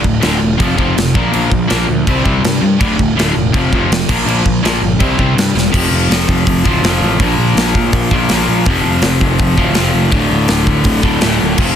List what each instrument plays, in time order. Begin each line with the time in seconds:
0.02 picked electric bass D1, distorted electric guitar D2 A2, kick
0.20 picked electric bass D1, distorted electric guitar D2 A2 D3, snare, crash
0.39 picked electric bass E1, distorted electric guitar D2 A2
0.57 picked electric bass F1, distorted electric guitar F2 C3 F3, kick, crash
0.76 picked electric bass F1, distorted electric guitar F2 C3 F3, kick
0.96 picked electric bass F1, distorted electric guitar F2 C3, snare, crash
1.14 picked electric bass A#1, distorted electric guitar A#2 F3 A#3, kick
1.31 picked electric bass A#1, distorted electric guitar A#2 F3 A#3, crash
1.50 picked electric bass A#1, distorted electric guitar A#2 F3, kick
1.68 picked electric bass A#1, distorted electric guitar A#2 F3 A#3, snare, crash
1.88 picked electric bass D2, distorted electric guitar A#2 F3
2.07 picked electric bass C2, distorted electric guitar C3 G3 C4, kick, crash
2.24 picked electric bass C2, distorted electric guitar C3 G3 C4, kick
2.44 picked electric bass G2, distorted electric guitar C3 G3, snare, crash
2.61 picked electric bass G2, distorted electric guitar C3 G3
2.79 picked electric bass D1, distorted electric guitar D2 A2 D3, kick, crash
2.98 picked electric bass D1, distorted electric guitar D2 A2, kick
3.16 picked electric bass D1, distorted electric guitar D2 A2 D3, snare, crash
3.35 picked electric bass E1, distorted electric guitar D2 A2
3.52 picked electric bass F1, distorted electric guitar F2 C3 F3, kick, crash
3.73 picked electric bass F1, distorted electric guitar F2 C3 F3, kick
3.90 picked electric bass F1, distorted electric guitar F2 C3, snare, crash
4.09 picked electric bass A#1, distorted electric guitar A#2 F3 A#3, kick, crash
4.26 picked electric bass A#1, distorted electric guitar A#2 F3 A#3, crash
4.45 picked electric bass A#1, distorted electric guitar A#2 F3, kick
4.63 picked electric bass A#1, distorted electric guitar A#2 F3 A#3, snare, crash
4.81 picked electric bass G1, distorted electric guitar A#2 F3
4.99 picked electric bass C2, distorted electric guitar C3 G3 C4, kick, crash
5.18 picked electric bass C2, distorted electric guitar C3 G3 C4, kick
5.35 picked electric bass G2, distorted electric guitar C3 G3, snare, crash
5.55 picked electric bass E1, distorted electric guitar C3 G3, snare
5.72 picked electric bass F1, distorted electric guitar F2 C3 F3, kick, crash
5.91 picked electric bass F1
6.10 picked electric bass F1, snare, open hi-hat
6.29 picked electric bass F1, kick
6.47 picked electric bass F1, kick, open hi-hat
6.64 picked electric bass D1, distorted electric guitar F2 C3 F3, kick
6.82 picked electric bass F1, distorted electric guitar F2 C3 F3, snare, open hi-hat
7.00 picked electric bass A1
7.20 picked electric bass A#1, distorted electric guitar A#2 F3 A#3, kick, open hi-hat
7.38 picked electric bass A#1
7.55 picked electric bass A#1, snare, open hi-hat
7.75 picked electric bass A#1, kick
7.93 picked electric bass A#1, kick, open hi-hat
8.11 picked electric bass A#1, distorted electric guitar A#2 F3 A#3, kick
8.29 picked electric bass A#1, distorted electric guitar A#2 F3 A#3, snare, open hi-hat
8.48 picked electric bass A#1
8.65 picked electric bass F1, distorted electric guitar F2 C3 F3, kick, open hi-hat
8.86 picked electric bass F1
9.02 picked electric bass F1, snare, open hi-hat
9.21 picked electric bass F1, kick
9.39 picked electric bass F1, kick, open hi-hat
9.57 picked electric bass D1, distorted electric guitar F2 C3 F3, kick
9.74 picked electric bass F1, distorted electric guitar F2 C3 F3, snare, open hi-hat
9.94 picked electric bass F1
10.09 picked electric bass D1, distorted electric guitar D2 A2 D3, kick, open hi-hat
10.30 picked electric bass D1
10.48 picked electric bass D1, snare, open hi-hat
10.67 picked electric bass D1, kick
10.84 picked electric bass D1, kick, open hi-hat
11.02 picked electric bass D1, distorted electric guitar D2 A2 D3, kick
11.21 picked electric bass D1, distorted electric guitar D2 A2 D3, snare, open hi-hat
11.41 picked electric bass D1
11.57 picked electric bass F1, distorted electric guitar F2 C3 F3, kick, crash